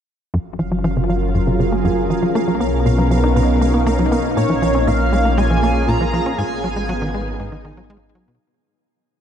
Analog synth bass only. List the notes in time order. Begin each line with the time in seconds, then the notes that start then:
0.34 F#2
0.59 F3
0.72 F#3
0.84 F3
0.97 C#3
1.09 F#3
1.35 F#2
1.47 C#3
1.60 C#3
1.72 A#3
1.85 F#2
2.10 F3
2.23 F#3
2.35 A#3
2.48 F#3
2.60 B3
2.86 B2
2.98 F#3
3.11 F#3
3.24 D#4
3.36 B2
3.61 A#3
3.74 B3
3.86 A#3
3.99 F#3
4.12 B3
4.37 A#2
4.50 F3
4.62 F3
4.75 C#4
4.87 A#2
5.13 G#3
5.25 A#3
5.38 G#3
5.50 F3
5.63 A#3
5.88 A#2
6.01 F3
6.13 F3
6.26 C#4
6.39 G#2
6.64 F#3
6.76 G#3
6.89 F#3
7.02 D#3
7.14 G#3
7.40 G#2
7.52 D#3
7.65 D#3
7.77 F#3
7.90 G#3
8.15 F#3
8.28 B2